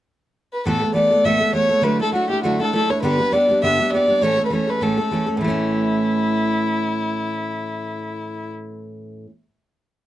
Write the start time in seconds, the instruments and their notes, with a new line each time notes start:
0.53 fiddle B4
0.66 steel-string acoustic guitar A2 E3 A3 B3 A4, fiddle A4
0.82 steel-string acoustic guitar A3 B3 A4
0.94 steel-string acoustic guitar E3 A3 B3 A4, fiddle D5
1.11 steel-string acoustic guitar A3 B3 A4
1.24 steel-string acoustic guitar A2 E3 A3 B3 A4, fiddle E5
1.41 steel-string acoustic guitar A3 B3 A4
1.53 steel-string acoustic guitar E3 A3 B3 A4, fiddle C#5
1.69 steel-string acoustic guitar A3 B3 A4
1.81 steel-string acoustic guitar D3 F#3 A3 D4 E4, fiddle B4
2.00 steel-string acoustic guitar A3 D4 E4, fiddle A4
2.12 steel-string acoustic guitar F#3 A3 D4 E4, fiddle F#4
2.29 steel-string acoustic guitar A3 D4 E4, fiddle G4
2.43 steel-string acoustic guitar D3 F#3 A3 D4 E4, fiddle F#4
2.60 steel-string acoustic guitar A3 D4 E4, fiddle A4
2.73 steel-string acoustic guitar F#3 A3 D4 E4, fiddle A4
2.90 steel-string acoustic guitar A3 D4 E4, fiddle C#5
3.01 steel-string acoustic guitar G2 D3 G3 B3 D4 G4, fiddle B4
3.18 steel-string acoustic guitar G3 B3 D4 G4
3.32 steel-string acoustic guitar G3 B3 D4 G4, fiddle D5
3.48 steel-string acoustic guitar G3 B3 D4 G4
3.62 steel-string acoustic guitar G2 D3 G3 B3 D4 G4, fiddle E5
3.80 steel-string acoustic guitar G3 B3 D4 G4
3.92 steel-string acoustic guitar G3 B3 D4, fiddle D5
3.96 steel-string acoustic guitar G4
4.08 steel-string acoustic guitar G3 B3 D4 G4
4.21 steel-string acoustic guitar A2 E3 A3 C#4 A4, fiddle C#5
4.38 steel-string acoustic guitar A3 C#4 A4
4.46 fiddle B4
4.50 steel-string acoustic guitar E3 A3 C#4 A4, fiddle C#5
4.67 steel-string acoustic guitar A3 C#4 A4, fiddle B4
4.81 steel-string acoustic guitar A2 E3 A3 C#4 A4, fiddle A4
4.97 steel-string acoustic guitar A3 C#4 A4
5.11 steel-string acoustic guitar E3 A3 C#4 A4
5.26 steel-string acoustic guitar A3 C#4 A4
5.37 steel-string acoustic guitar A2 E3, fiddle E4
5.44 steel-string acoustic guitar A3 C#4
5.50 steel-string acoustic guitar E4